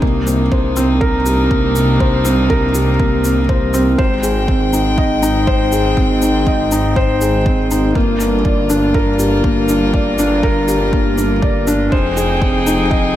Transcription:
0.02 3.96 C2 medium
0.02 3.95 C3 medium
0.02 3.95 G3 medium
0.02 0.26 A#3 medium
0.02 3.95 A#3 medium
0.02 3.95 D4 medium
0.02 3.95 D#4 medium
0.02 kick loud
0.27 0.41 C4 medium
0.27 shaker medium
0.52 0.75 C5 medium
0.52 kick medium
0.77 1.00 C4 loud
0.77 shaker medium
1.01 1.15 A#4 loud
1.01 kick loud
1.26 1.40 G4 medium
1.26 shaker medium
1.51 1.74 A#3 medium
1.51 kick loud
1.76 1.90 C4 medium
1.76 shaker medium
2.00 2.24 C5 medium
2.00 kick loud
2.25 2.49 C4 loud
2.25 shaker medium
2.50 2.64 A#4 loud
2.50 kick loud
2.75 2.89 G4 medium
2.75 shaker medium
3.00 3.23 A#3 medium
3.00 kick loud
3.24 3.39 C4 medium
3.24 shaker medium
3.49 3.73 C5 medium
3.49 kick loud
3.74 3.98 C4 loud
3.74 shaker medium
3.98 7.93 G#1 medium
3.98 7.92 G#3 medium
3.98 7.92 C4 medium
3.98 4.13 C5 loud
3.98 7.92 G5 medium
3.98 kick loud
4.23 4.38 G#4 medium
4.23 shaker medium
4.48 4.72 C4 medium
4.48 kick loud
4.73 4.87 D#4 medium
4.73 shaker medium
4.98 5.22 D#5 medium
4.98 kick loud
5.23 5.46 D#4 loud
5.23 shaker medium
5.47 5.62 C5 loud
5.47 kick loud
5.72 5.87 G#4 medium
5.72 shaker medium
5.97 6.21 C4 medium
5.97 kick loud
6.22 6.36 D#4 medium
6.22 shaker medium
6.47 6.71 D#5 medium
6.47 kick loud
6.72 6.95 D#4 loud
6.72 shaker medium
6.96 7.11 C5 loud
6.96 kick loud
7.21 7.35 G#4 medium
7.21 shaker medium
7.46 7.70 C4 medium
7.46 kick loud
7.71 7.85 D#4 medium
7.71 shaker medium
7.95 11.90 G1 medium
7.95 11.88 G3 medium
7.95 8.19 A#3 medium
7.95 11.88 A#3 medium
7.95 11.88 F4 medium
7.95 kick loud
8.20 8.34 D4 medium
8.20 shaker medium
8.45 8.69 D5 medium
8.45 kick loud
8.70 8.93 D4 loud
8.70 shaker medium
8.94 9.09 A#4 medium
8.94 kick loud
9.19 9.34 G4 medium
9.19 shaker medium
9.44 9.68 A#3 medium
9.44 kick loud
9.69 9.83 D4 medium
9.69 shaker medium
9.94 10.18 D5 medium
9.94 kick loud
10.19 10.42 D4 loud
10.19 shaker medium
10.43 10.58 A#4 loud
10.43 kick loud
10.68 10.82 G4 medium
10.68 shaker medium
10.93 11.17 A#3 medium
10.93 kick loud
11.18 11.32 D4 medium
11.18 shaker medium
11.42 11.66 D5 medium
11.42 kick loud
11.67 11.91 D4 loud
11.67 shaker medium
11.92 13.16 F1 medium
11.92 13.16 F3 medium
11.92 13.16 C4 medium
11.92 13.16 D#4 medium
11.92 13.16 G#4 loud
11.92 12.06 C5 loud
11.92 13.16 G5 medium
11.92 kick loud
12.17 12.31 G#4 medium
12.17 shaker medium
12.42 12.65 C4 medium
12.42 kick loud
12.67 12.81 D#4 medium
12.67 shaker medium
12.91 13.15 D#5 medium
12.91 kick loud

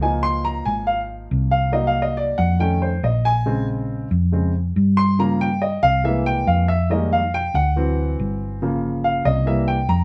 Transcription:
0.00 0.61 C#2 medium
0.00 1.70 F3 medium
0.00 1.70 A#3 soft
0.00 1.71 D#4 medium
0.00 0.23 G#5 medium
0.23 0.44 C6 loud
0.45 0.66 A#5 medium
0.65 1.27 G#1 medium
0.65 0.87 G#5 medium
0.87 1.00 F5 medium
1.31 2.33 C2 medium
1.51 1.73 F5 medium
1.72 2.55 F#3 medium
1.72 2.55 A#3 soft
1.72 2.56 D#4 medium
1.72 1.88 D#5 medium
1.87 2.02 F5 medium
2.02 2.17 D#5 medium
2.17 2.38 D5 medium
2.38 2.99 F2 medium
2.38 2.59 F#5 medium
2.59 2.88 D#3 soft
2.59 2.89 A3 soft
2.59 2.89 C#4 medium
2.59 2.81 G5 medium
2.82 3.03 C5 medium
3.03 4.05 A#1 medium
3.03 3.25 D#5 medium
3.25 3.65 G#5 medium
3.46 4.07 C#3 medium
3.46 4.07 G#3 soft
3.46 4.08 C4 medium
4.11 4.71 F2 medium
4.32 4.52 C#3 soft
4.32 4.52 G#3 soft
4.32 4.52 C4 medium
4.76 5.77 G2 medium
4.97 5.18 C6 loud
5.19 5.47 C#3 medium
5.19 5.47 F3 soft
5.19 5.48 A#3 medium
5.19 5.40 A#5 medium
5.41 5.61 G5 medium
5.62 5.82 D#5 medium
5.83 6.43 C2 medium
5.83 6.04 F5 loud
6.04 6.65 E3 medium
6.04 6.65 G#3 soft
6.04 6.66 A#3 medium
6.04 6.25 E5 medium
6.26 6.47 G5 medium
6.47 7.48 F2 medium
6.47 6.68 F5 medium
6.68 6.89 E5 medium
6.90 7.18 D#3 medium
6.90 7.19 G3 soft
6.90 7.19 G#3 soft
6.90 7.19 A#3 medium
6.90 7.11 D#5 medium
7.13 7.33 F5 medium
7.34 7.54 G5 loud
7.54 8.15 D2 medium
7.54 8.15 F#5 medium
7.76 8.58 E3 medium
7.76 8.58 F#3 soft
7.76 8.58 C4 medium
8.19 9.20 G1 medium
8.62 9.43 C#3 medium
8.62 9.44 F3 medium
8.62 9.44 A#3 medium
9.04 9.25 F5 medium
9.25 9.86 C2 medium
9.25 9.46 D#5 medium
9.46 9.75 E3 medium
9.46 9.76 G3 soft
9.46 9.76 A#3 medium
9.46 9.68 E5 medium
9.68 9.89 G5 medium
9.89 10.04 F2 medium
9.89 10.04 A#5 medium

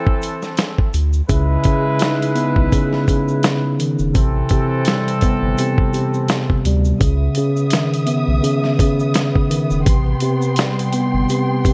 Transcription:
0.00 0.90 E3 medium
0.00 0.90 C4 medium
0.00 0.90 A4 loud
0.07 kick loud
0.22 closed hi-hat medium
0.22 shaker medium
0.42 snare soft
0.42 shaker soft
0.57 snare loud
0.57 closed hi-hat medium
0.57 shaker medium
0.78 kick medium
0.94 1.22 D2 loud
0.94 closed hi-hat medium
0.94 shaker soft
1.13 shaker medium
1.29 1.57 C#2 loud
1.29 1.65 C#3 medium
1.29 3.75 G#3 medium
1.29 3.75 E4 medium
1.29 3.75 B4 medium
1.29 kick loud
1.29 closed hi-hat loud
1.29 shaker medium
1.64 2.71 C#3 medium
1.64 kick medium
1.64 closed hi-hat medium
1.64 shaker soft
1.99 4.15 D#4 medium
1.99 snare loud
1.99 closed hi-hat loud
1.99 shaker medium
2.22 closed hi-hat medium
2.35 4.14 B3 medium
2.35 closed hi-hat medium
2.35 shaker medium
2.56 2.69 B1 medium
2.56 kick medium
2.72 3.08 C#3 medium
2.72 kick medium
2.72 closed hi-hat medium
2.72 shaker medium
2.93 snare soft
3.08 4.16 C#3 medium
3.08 kick medium
3.08 closed hi-hat medium
3.08 shaker medium
3.28 shaker soft
3.43 snare loud
3.43 closed hi-hat medium
3.43 shaker medium
3.79 4.15 D#3 medium
3.79 closed hi-hat medium
3.79 shaker soft
3.99 4.12 E1 medium
3.99 shaker medium
4.14 4.43 A1 loud
4.14 4.49 C3 medium
4.14 6.61 E3 medium
4.14 6.61 C4 medium
4.14 6.61 A4 medium
4.14 kick loud
4.14 closed hi-hat loud
4.14 shaker medium
4.49 5.57 C3 medium
4.49 kick loud
4.49 closed hi-hat medium
4.49 shaker soft
4.85 6.65 G3 medium
4.85 snare loud
4.85 closed hi-hat loud
4.85 shaker medium
5.08 closed hi-hat medium
5.21 7.01 B3 medium
5.21 kick loud
5.21 closed hi-hat medium
5.21 shaker medium
5.42 5.54 G1 medium
5.58 5.92 C3 medium
5.58 closed hi-hat medium
5.58 shaker medium
5.78 kick loud
5.93 7.01 C3 medium
5.93 closed hi-hat medium
5.93 shaker medium
6.14 shaker medium
6.28 snare loud
6.28 closed hi-hat medium
6.28 shaker medium
6.50 kick medium
6.65 6.93 D2 loud
6.65 7.02 G3 medium
6.65 closed hi-hat medium
6.65 shaker medium
6.85 shaker medium
7.00 7.29 C#2 loud
7.00 7.36 C#3 medium
7.00 11.73 B3 medium
7.00 9.83 E5 medium
7.00 9.83 D#6 loud
7.00 kick loud
7.00 closed hi-hat loud
7.00 shaker medium
7.35 8.42 C#3 medium
7.35 closed hi-hat medium
7.35 shaker soft
7.57 shaker medium
7.70 9.49 D#3 medium
7.70 snare loud
7.70 closed hi-hat loud
7.70 shaker medium
7.94 closed hi-hat medium
8.06 9.86 B3 medium
8.06 closed hi-hat medium
8.06 shaker medium
8.28 8.40 B1 medium
8.43 8.79 C#3 medium
8.43 closed hi-hat medium
8.43 shaker medium
8.64 snare soft
8.79 9.87 C#3 medium
8.79 kick medium
8.79 closed hi-hat medium
8.79 shaker medium
9.00 shaker medium
9.14 snare loud
9.14 closed hi-hat medium
9.14 shaker medium
9.35 kick medium
9.50 9.86 D#3 medium
9.50 closed hi-hat medium
9.50 shaker medium
9.70 9.83 E1 medium
9.70 shaker medium
9.85 10.14 A1 loud
9.85 10.20 C3 medium
9.85 11.73 G5 medium
9.85 11.73 C6 medium
9.85 kick loud
9.85 closed hi-hat loud
9.85 shaker medium
10.20 11.28 C3 medium
10.20 closed hi-hat medium
10.20 shaker medium
10.42 shaker medium
10.56 11.73 G3 medium
10.56 snare loud
10.56 closed hi-hat loud
10.56 shaker medium
10.79 closed hi-hat medium
10.93 11.73 B3 medium
10.93 closed hi-hat medium
10.93 shaker medium
11.14 11.26 G1 medium
11.29 11.64 C3 medium
11.29 closed hi-hat medium
11.29 shaker medium
11.65 11.73 C3 medium
11.65 kick medium
11.65 closed hi-hat medium
11.65 shaker medium

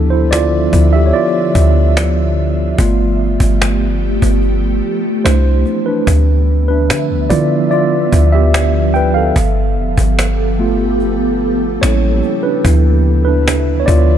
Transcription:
0.00 0.69 D2 loud
0.00 2.75 D3 medium
0.00 0.72 F3 medium
0.00 5.21 F3 medium
0.00 0.72 B3 medium
0.00 2.75 B3 medium
0.00 2.81 D4 medium
0.00 0.11 E4 medium
0.00 0.13 A4 medium
0.00 2.75 E5 medium
0.10 0.31 E4 medium
0.10 0.30 C5 medium
0.31 0.90 F4 medium
0.31 0.95 D5 loud
0.31 cajon slap loud
0.73 1.12 D2 loud
0.73 1.10 F3 soft
0.73 1.10 B3 soft
0.73 1.11 E4 medium
0.73 cajon bass medium
0.93 1.07 G4 medium
0.93 1.07 E5 medium
1.06 1.14 C#5 medium
1.13 2.79 F4 medium
1.13 5.21 D5 medium
1.55 2.75 D2 loud
1.55 cajon bass medium
1.97 cajon slap loud
2.78 3.38 G1 loud
2.78 3.98 A3 medium
2.78 6.04 A3 medium
2.78 5.23 B3 medium
2.78 3.98 B3 medium
2.78 3.98 F4 medium
2.78 6.04 G4 medium
2.78 cajon bass loud
3.40 4.19 G1 loud
3.40 cajon bass medium
3.62 cajon slap loud
4.22 4.81 G1 medium
4.22 cajon bass medium
4.43 cajon slap soft
5.25 5.65 C2 loud
5.25 6.03 A3 medium
5.25 5.87 D4 medium
5.25 5.83 E4 medium
5.25 5.88 C5 medium
5.25 cajon slap loud
5.66 cajon slap soft
5.86 6.66 D4 medium
5.86 6.67 B4 medium
6.07 6.91 D2 loud
6.07 9.33 D3 medium
6.07 11.79 F3 medium
6.07 9.33 B3 medium
6.07 9.33 E5 medium
6.07 cajon bass loud
6.68 7.27 D4 medium
6.68 7.32 B4 medium
6.90 7.12 D3 loud
6.90 cajon slap loud
7.10 7.30 D2 loud
7.30 8.09 D3 loud
7.30 7.85 F3 medium
7.30 7.85 B3 medium
7.30 7.86 E4 medium
7.30 7.69 F4 medium
7.30 7.70 D5 medium
7.30 cajon bass medium
7.71 8.30 F4 medium
7.71 8.29 D5 medium
7.71 cajon slap soft
8.13 9.32 D2 loud
8.13 cajon bass medium
8.32 8.92 G4 medium
8.32 8.96 E5 medium
8.54 cajon slap loud
8.94 9.15 B4 medium
8.94 9.16 G5 loud
8.94 cajon slap soft
9.14 9.94 A4 medium
9.14 9.93 F5 medium
9.36 9.79 G1 loud
9.36 11.80 B3 medium
9.36 11.80 G4 medium
9.36 12.61 A4 medium
9.36 cajon bass loud
9.77 9.97 F1 loud
9.98 11.79 G1 loud
9.98 cajon bass medium
10.19 cajon slap loud
10.59 11.14 A3 medium
10.59 11.14 B3 medium
10.59 11.15 F4 medium
11.00 cajon slap soft
11.81 12.22 A1 loud
11.81 12.61 G3 medium
11.81 12.61 A#3 medium
11.81 12.61 C#4 medium
11.81 12.41 E4 medium
11.81 12.40 C#5 medium
11.81 cajon slap loud
12.23 cajon slap soft
12.43 13.23 D4 medium
12.43 13.23 B4 medium
12.64 13.84 D2 loud
12.64 14.18 D3 medium
12.64 14.18 F3 medium
12.64 13.19 F3 medium
12.64 14.18 B3 medium
12.64 13.20 B3 medium
12.64 13.20 E4 medium
12.64 14.18 E5 medium
12.64 cajon bass loud
13.25 13.78 D4 medium
13.25 13.76 B4 medium
13.48 cajon slap loud
13.80 13.87 C#5 medium
13.86 14.18 D2 loud
13.86 14.18 F4 medium
13.86 14.18 D5 medium
13.86 cajon bass medium

